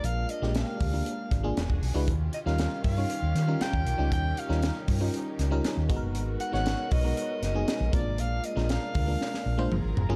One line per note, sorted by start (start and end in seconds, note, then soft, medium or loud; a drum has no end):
0.00 0.24 A#1 loud
0.00 0.29 G#3 medium
0.00 1.53 G#3 medium
0.00 0.29 A#3 medium
0.00 1.55 A#3 medium
0.00 0.29 D4 medium
0.00 1.55 D4 medium
0.00 0.30 F4 medium
0.00 0.30 A#4 medium
0.00 closed hi-hat medium
0.05 0.32 F5 loud
0.29 0.55 D#5 medium
0.29 closed hi-hat medium
0.42 0.62 A#1 medium
0.42 0.74 G#3 medium
0.42 0.74 A#3 medium
0.42 0.74 D4 medium
0.42 0.75 F4 medium
0.42 0.75 G4 medium
0.42 snare soft
0.55 1.53 F5 medium
0.55 snare loud
0.55 closed hi-hat medium
0.80 1.00 D2 medium
0.80 kick medium
0.80 open hi-hat medium
0.93 1.25 G#3 medium
0.93 1.25 A#3 medium
0.93 1.25 D4 medium
0.93 1.25 F4 medium
0.93 1.26 A#4 medium
1.06 closed hi-hat medium
1.31 1.51 G#1 medium
1.31 kick loud
1.31 snare soft
1.31 closed hi-hat medium
1.43 1.56 G#3 medium
1.43 1.57 A#3 medium
1.43 1.57 D4 medium
1.43 1.57 F4 medium
1.43 1.57 G#4 loud
1.57 1.67 E1 medium
1.57 2.07 E3 medium
1.57 2.07 D4 medium
1.57 2.07 F#4 medium
1.57 2.07 G#4 medium
1.57 snare loud
1.57 closed hi-hat medium
1.70 1.79 E1 medium
1.70 kick medium
1.82 1.92 B1 medium
1.82 open hi-hat medium
1.94 2.05 C#2 medium
1.94 2.07 G#3 medium
1.94 2.07 D4 medium
1.94 2.08 E4 medium
1.94 2.08 F#4 medium
1.94 2.08 B4 loud
2.07 2.28 D#2 medium
2.07 5.86 D#3 medium
2.07 5.86 C#4 medium
2.07 4.09 F4 medium
2.07 5.86 G4 medium
2.07 kick loud
2.07 closed hi-hat medium
2.33 2.39 D#5 medium
2.33 closed hi-hat medium
2.46 2.66 D#2 medium
2.46 2.78 G3 medium
2.46 2.78 C#4 medium
2.46 2.78 D#4 medium
2.46 2.78 F4 medium
2.46 2.78 A#4 medium
2.46 2.82 F5 medium
2.46 snare soft
2.58 snare loud
2.58 closed hi-hat medium
2.84 3.04 G2 medium
2.84 3.63 F5 loud
2.84 kick medium
2.84 open hi-hat medium
2.97 3.29 G3 medium
2.97 3.29 C#4 medium
2.97 3.29 D#4 medium
2.97 3.29 F4 medium
2.97 3.29 C#5 medium
3.10 closed hi-hat medium
3.22 3.32 D#2 medium
3.35 3.55 D#3 loud
3.35 snare soft
3.35 closed hi-hat medium
3.47 3.80 G3 medium
3.47 3.80 C#4 medium
3.47 3.80 D#4 medium
3.47 3.80 F4 medium
3.47 3.80 A#4 medium
3.61 4.12 G5 loud
3.61 snare loud
3.61 closed hi-hat medium
3.73 3.83 D#2 medium
3.73 kick medium
3.86 3.96 B1 medium
3.86 closed hi-hat medium
3.98 4.09 C#2 medium
3.98 4.30 G3 medium
3.98 4.31 C#4 medium
3.98 4.31 D#4 medium
3.98 4.31 F4 medium
3.98 4.31 G4 medium
4.12 4.31 D#2 medium
4.12 5.88 D#4 medium
4.12 4.40 G5 loud
4.12 kick loud
4.12 closed hi-hat medium
4.37 4.89 F5 medium
4.37 closed hi-hat medium
4.49 4.69 D#2 medium
4.49 4.81 G3 medium
4.49 4.82 C#4 medium
4.49 4.82 D#4 medium
4.49 4.82 F4 medium
4.49 4.82 A#4 medium
4.49 snare soft
4.62 snare loud
4.62 closed hi-hat medium
4.88 5.08 G2 loud
4.88 kick medium
4.88 open hi-hat medium
5.00 5.32 G3 medium
5.00 5.33 C#4 medium
5.00 5.33 D#4 medium
5.00 5.33 F4 medium
5.00 5.33 A#4 medium
5.14 closed hi-hat medium
5.39 5.59 C#2 medium
5.39 snare soft
5.39 closed hi-hat medium
5.51 5.83 G3 medium
5.51 5.83 C#4 medium
5.51 5.84 D#4 medium
5.51 5.84 F4 medium
5.51 5.84 A#4 loud
5.64 snare loud
5.64 closed hi-hat medium
5.77 5.87 D#2 medium
5.89 5.99 G#1 medium
5.89 6.40 G#3 medium
5.89 9.68 G#3 medium
5.89 6.40 B3 medium
5.89 7.91 B3 medium
5.89 6.41 D#4 medium
5.89 7.91 F#4 medium
5.89 6.41 F#4 medium
5.89 5.96 G#4 medium
5.89 7.91 A#4 medium
5.89 kick loud
5.89 closed hi-hat medium
5.96 6.44 A#4 loud
6.03 6.15 F#1 medium
6.15 6.35 G#1 medium
6.15 closed hi-hat medium
6.40 6.52 F#5 loud
6.40 closed hi-hat medium
6.52 6.73 G#1 medium
6.52 6.85 G#3 medium
6.52 6.85 B3 medium
6.52 6.85 D#4 medium
6.52 6.85 F#4 medium
6.52 6.85 C#5 medium
6.52 6.94 F#5 loud
6.52 snare soft
6.66 snare loud
6.66 closed hi-hat medium
6.91 7.11 B1 medium
6.91 7.43 D#5 loud
6.91 kick medium
6.91 open hi-hat medium
7.03 7.36 G#3 medium
7.03 7.36 B3 medium
7.03 7.36 D#4 medium
7.03 7.36 F#4 medium
7.03 7.37 A#4 medium
7.17 closed hi-hat medium
7.42 7.62 F#1 medium
7.42 7.91 D#5 medium
7.42 snare soft
7.42 closed hi-hat medium
7.54 7.87 G#3 medium
7.54 7.87 B3 medium
7.54 7.87 D#4 medium
7.54 7.87 F#4 medium
7.54 7.87 G#4 medium
7.68 snare loud
7.68 closed hi-hat medium
7.80 7.90 A#1 medium
7.92 8.06 A#1 medium
7.92 8.44 G#3 medium
7.92 8.44 A#3 medium
7.92 9.69 A#3 medium
7.92 7.99 C4 medium
7.92 9.70 D4 medium
7.92 8.44 F4 medium
7.92 8.44 A#4 medium
7.92 8.21 D5 medium
7.92 kick loud
7.92 closed hi-hat medium
7.99 8.47 D4 medium
8.06 8.18 G#1 medium
8.18 8.38 A#1 loud
8.18 8.47 F5 loud
8.18 closed hi-hat medium
8.44 8.72 D#5 medium
8.44 closed hi-hat medium
8.56 8.76 A#1 medium
8.56 8.88 G#3 medium
8.56 8.89 A#3 medium
8.56 8.89 D4 medium
8.56 8.89 F4 medium
8.56 8.89 A#4 medium
8.56 snare soft
8.69 9.72 F5 medium
8.69 snare loud
8.69 closed hi-hat medium
8.95 9.15 D2 medium
8.95 kick medium
8.95 open hi-hat medium
9.07 9.39 G#3 medium
9.07 9.39 A#3 medium
9.07 9.40 D4 medium
9.07 9.40 F4 medium
9.07 9.40 A#4 medium
9.21 snare medium
9.34 snare medium
9.46 9.66 A#1 medium
9.58 9.71 G#3 medium
9.58 9.71 A#3 medium
9.58 9.71 D4 medium
9.58 9.71 F4 medium
9.58 9.72 C5 loud
9.58 high tom medium
9.71 9.81 F#1 loud
9.71 10.16 F#3 medium
9.71 10.16 F4 medium
9.71 10.16 G#4 medium
9.71 10.16 A#4 medium
9.71 mid tom medium
9.84 9.94 G#1 medium
9.97 10.07 F1 medium
9.97 floor tom loud
10.09 10.16 F#1 medium
10.09 10.16 F#3 loud
10.09 10.16 A#3 medium
10.09 10.16 C#4 medium
10.09 10.16 F4 medium
10.09 10.16 G#4 loud
10.09 floor tom medium